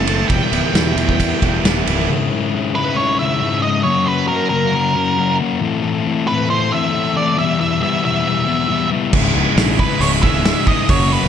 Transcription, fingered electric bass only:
0, 0, Header, 1, 2, 480
1, 0, Start_track
1, 0, Tempo, 445104
1, 321, Time_signature, 4, 2, 24, 8
1, 4638, Tempo, 439883
1, 12257, End_track
2, 0, Start_track
2, 0, Title_t, "Fingered electric bass"
2, 0, Program_c, 0, 33
2, 0, Note_on_c, 0, 30, 89
2, 248, Note_off_c, 0, 30, 0
2, 317, Note_on_c, 0, 28, 84
2, 414, Note_off_c, 0, 28, 0
2, 563, Note_on_c, 0, 25, 86
2, 658, Note_off_c, 0, 25, 0
2, 796, Note_on_c, 0, 40, 94
2, 990, Note_off_c, 0, 40, 0
2, 1036, Note_on_c, 0, 40, 80
2, 1420, Note_off_c, 0, 40, 0
2, 1533, Note_on_c, 0, 28, 82
2, 1748, Note_off_c, 0, 28, 0
2, 1769, Note_on_c, 0, 27, 92
2, 1986, Note_off_c, 0, 27, 0
2, 2019, Note_on_c, 0, 25, 81
2, 2231, Note_off_c, 0, 25, 0
2, 9914, Note_on_c, 0, 25, 99
2, 10103, Note_off_c, 0, 25, 0
2, 10149, Note_on_c, 0, 25, 108
2, 10246, Note_off_c, 0, 25, 0
2, 10381, Note_on_c, 0, 34, 95
2, 10575, Note_off_c, 0, 34, 0
2, 10859, Note_on_c, 0, 25, 106
2, 11149, Note_off_c, 0, 25, 0
2, 11226, Note_on_c, 0, 25, 99
2, 11419, Note_off_c, 0, 25, 0
2, 11831, Note_on_c, 0, 30, 107
2, 12117, Note_off_c, 0, 30, 0
2, 12204, Note_on_c, 0, 27, 96
2, 12257, Note_off_c, 0, 27, 0
2, 12257, End_track
0, 0, End_of_file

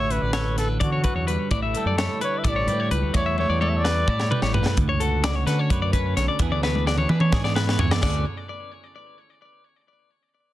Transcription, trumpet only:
0, 0, Header, 1, 2, 480
1, 0, Start_track
1, 0, Key_signature, 2, "major"
1, 0, Tempo, 465116
1, 1555, Time_signature, 7, 3, 24, 8
1, 10869, End_track
2, 0, Start_track
2, 0, Title_t, "Trumpet"
2, 0, Program_c, 0, 56
2, 0, Note_on_c, 0, 73, 104
2, 115, Note_on_c, 0, 71, 87
2, 130, Note_off_c, 0, 73, 0
2, 592, Note_off_c, 0, 71, 0
2, 598, Note_on_c, 0, 69, 78
2, 705, Note_off_c, 0, 69, 0
2, 857, Note_on_c, 0, 66, 78
2, 1350, Note_off_c, 0, 66, 0
2, 1819, Note_on_c, 0, 69, 77
2, 2256, Note_off_c, 0, 69, 0
2, 2302, Note_on_c, 0, 73, 93
2, 2457, Note_on_c, 0, 76, 62
2, 2472, Note_off_c, 0, 73, 0
2, 2563, Note_on_c, 0, 74, 99
2, 2579, Note_off_c, 0, 76, 0
2, 3022, Note_off_c, 0, 74, 0
2, 3247, Note_on_c, 0, 73, 101
2, 3468, Note_off_c, 0, 73, 0
2, 3500, Note_on_c, 0, 73, 92
2, 3715, Note_off_c, 0, 73, 0
2, 3727, Note_on_c, 0, 74, 84
2, 3804, Note_on_c, 0, 76, 65
2, 3820, Note_off_c, 0, 74, 0
2, 3889, Note_on_c, 0, 74, 107
2, 3904, Note_off_c, 0, 76, 0
2, 4694, Note_off_c, 0, 74, 0
2, 10869, End_track
0, 0, End_of_file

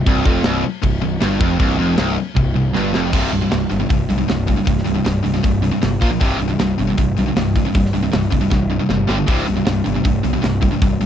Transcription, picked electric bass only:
0, 0, Header, 1, 2, 480
1, 0, Start_track
1, 0, Tempo, 383877
1, 79, Time_signature, 4, 2, 24, 8
1, 13828, End_track
2, 0, Start_track
2, 0, Title_t, "Picked electric bass"
2, 0, Program_c, 0, 34
2, 90, Note_on_c, 0, 24, 97
2, 307, Note_off_c, 0, 24, 0
2, 319, Note_on_c, 0, 29, 102
2, 541, Note_off_c, 0, 29, 0
2, 564, Note_on_c, 0, 24, 94
2, 784, Note_off_c, 0, 24, 0
2, 1048, Note_on_c, 0, 24, 85
2, 1265, Note_off_c, 0, 24, 0
2, 1286, Note_on_c, 0, 24, 82
2, 1503, Note_off_c, 0, 24, 0
2, 1518, Note_on_c, 0, 31, 102
2, 1739, Note_off_c, 0, 31, 0
2, 1768, Note_on_c, 0, 29, 94
2, 1984, Note_off_c, 0, 29, 0
2, 2001, Note_on_c, 0, 24, 96
2, 2220, Note_off_c, 0, 24, 0
2, 2250, Note_on_c, 0, 29, 94
2, 2465, Note_off_c, 0, 29, 0
2, 2488, Note_on_c, 0, 24, 95
2, 2703, Note_off_c, 0, 24, 0
2, 2966, Note_on_c, 0, 24, 78
2, 3182, Note_off_c, 0, 24, 0
2, 3214, Note_on_c, 0, 24, 78
2, 3426, Note_off_c, 0, 24, 0
2, 3458, Note_on_c, 0, 31, 94
2, 3668, Note_off_c, 0, 31, 0
2, 3691, Note_on_c, 0, 29, 95
2, 3904, Note_off_c, 0, 29, 0
2, 3919, Note_on_c, 0, 24, 87
2, 4079, Note_off_c, 0, 24, 0
2, 4167, Note_on_c, 0, 24, 82
2, 4324, Note_off_c, 0, 24, 0
2, 4409, Note_on_c, 0, 24, 83
2, 4565, Note_off_c, 0, 24, 0
2, 4642, Note_on_c, 0, 31, 80
2, 4801, Note_off_c, 0, 31, 0
2, 4883, Note_on_c, 0, 24, 89
2, 5041, Note_off_c, 0, 24, 0
2, 5137, Note_on_c, 0, 35, 83
2, 5291, Note_off_c, 0, 35, 0
2, 5374, Note_on_c, 0, 24, 90
2, 5691, Note_off_c, 0, 24, 0
2, 5845, Note_on_c, 0, 24, 96
2, 6003, Note_off_c, 0, 24, 0
2, 6089, Note_on_c, 0, 24, 85
2, 6246, Note_off_c, 0, 24, 0
2, 6322, Note_on_c, 0, 24, 89
2, 6481, Note_off_c, 0, 24, 0
2, 6563, Note_on_c, 0, 24, 80
2, 6722, Note_off_c, 0, 24, 0
2, 6804, Note_on_c, 0, 24, 92
2, 7126, Note_off_c, 0, 24, 0
2, 7288, Note_on_c, 0, 31, 88
2, 7446, Note_off_c, 0, 31, 0
2, 7534, Note_on_c, 0, 34, 84
2, 7690, Note_off_c, 0, 34, 0
2, 7769, Note_on_c, 0, 24, 91
2, 7927, Note_off_c, 0, 24, 0
2, 8006, Note_on_c, 0, 24, 84
2, 8165, Note_off_c, 0, 24, 0
2, 8249, Note_on_c, 0, 24, 87
2, 8408, Note_off_c, 0, 24, 0
2, 8494, Note_on_c, 0, 31, 87
2, 8651, Note_off_c, 0, 31, 0
2, 8729, Note_on_c, 0, 24, 88
2, 8887, Note_off_c, 0, 24, 0
2, 8975, Note_on_c, 0, 35, 82
2, 9132, Note_off_c, 0, 35, 0
2, 9207, Note_on_c, 0, 24, 92
2, 9529, Note_off_c, 0, 24, 0
2, 9692, Note_on_c, 0, 24, 92
2, 9850, Note_off_c, 0, 24, 0
2, 9946, Note_on_c, 0, 24, 84
2, 10099, Note_off_c, 0, 24, 0
2, 10175, Note_on_c, 0, 24, 85
2, 10332, Note_off_c, 0, 24, 0
2, 10412, Note_on_c, 0, 24, 81
2, 10570, Note_off_c, 0, 24, 0
2, 10648, Note_on_c, 0, 24, 92
2, 10971, Note_off_c, 0, 24, 0
2, 11125, Note_on_c, 0, 31, 85
2, 11286, Note_off_c, 0, 31, 0
2, 11360, Note_on_c, 0, 31, 82
2, 11523, Note_off_c, 0, 31, 0
2, 11607, Note_on_c, 0, 24, 90
2, 11767, Note_off_c, 0, 24, 0
2, 11853, Note_on_c, 0, 24, 84
2, 12011, Note_off_c, 0, 24, 0
2, 12090, Note_on_c, 0, 24, 88
2, 12250, Note_off_c, 0, 24, 0
2, 12335, Note_on_c, 0, 31, 78
2, 12493, Note_off_c, 0, 31, 0
2, 12566, Note_on_c, 0, 24, 87
2, 12727, Note_off_c, 0, 24, 0
2, 12807, Note_on_c, 0, 35, 81
2, 12968, Note_off_c, 0, 35, 0
2, 13050, Note_on_c, 0, 24, 89
2, 13372, Note_off_c, 0, 24, 0
2, 13535, Note_on_c, 0, 24, 88
2, 13693, Note_off_c, 0, 24, 0
2, 13768, Note_on_c, 0, 24, 88
2, 13828, Note_off_c, 0, 24, 0
2, 13828, End_track
0, 0, End_of_file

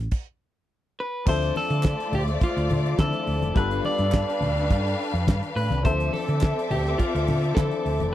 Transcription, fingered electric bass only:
0, 0, Header, 1, 2, 480
1, 0, Start_track
1, 0, Tempo, 572519
1, 1061, Time_signature, 4, 2, 24, 8
1, 6828, End_track
2, 0, Start_track
2, 0, Title_t, "Fingered electric bass"
2, 0, Program_c, 0, 33
2, 1063, Note_on_c, 0, 38, 109
2, 1258, Note_off_c, 0, 38, 0
2, 1428, Note_on_c, 0, 50, 93
2, 1624, Note_off_c, 0, 50, 0
2, 1780, Note_on_c, 0, 38, 95
2, 1977, Note_off_c, 0, 38, 0
2, 2152, Note_on_c, 0, 38, 100
2, 2243, Note_off_c, 0, 38, 0
2, 2265, Note_on_c, 0, 50, 104
2, 2459, Note_off_c, 0, 50, 0
2, 2503, Note_on_c, 0, 50, 111
2, 2606, Note_off_c, 0, 50, 0
2, 2745, Note_on_c, 0, 38, 97
2, 2848, Note_off_c, 0, 38, 0
2, 2869, Note_on_c, 0, 29, 91
2, 2961, Note_off_c, 0, 29, 0
2, 2981, Note_on_c, 0, 31, 108
2, 3177, Note_off_c, 0, 31, 0
2, 3346, Note_on_c, 0, 43, 89
2, 3543, Note_off_c, 0, 43, 0
2, 3695, Note_on_c, 0, 38, 97
2, 3945, Note_off_c, 0, 38, 0
2, 3945, Note_on_c, 0, 43, 110
2, 4140, Note_off_c, 0, 43, 0
2, 4306, Note_on_c, 0, 41, 106
2, 4399, Note_off_c, 0, 41, 0
2, 4425, Note_on_c, 0, 43, 109
2, 4527, Note_off_c, 0, 43, 0
2, 4660, Note_on_c, 0, 45, 97
2, 4765, Note_off_c, 0, 45, 0
2, 4783, Note_on_c, 0, 36, 112
2, 4878, Note_off_c, 0, 36, 0
2, 4901, Note_on_c, 0, 38, 112
2, 5097, Note_off_c, 0, 38, 0
2, 5270, Note_on_c, 0, 50, 113
2, 5465, Note_off_c, 0, 50, 0
2, 5620, Note_on_c, 0, 38, 86
2, 5817, Note_off_c, 0, 38, 0
2, 5993, Note_on_c, 0, 38, 109
2, 6084, Note_off_c, 0, 38, 0
2, 6108, Note_on_c, 0, 50, 115
2, 6301, Note_off_c, 0, 50, 0
2, 6347, Note_on_c, 0, 50, 106
2, 6449, Note_off_c, 0, 50, 0
2, 6586, Note_on_c, 0, 38, 99
2, 6689, Note_off_c, 0, 38, 0
2, 6717, Note_on_c, 0, 29, 115
2, 6825, Note_off_c, 0, 29, 0
2, 6828, End_track
0, 0, End_of_file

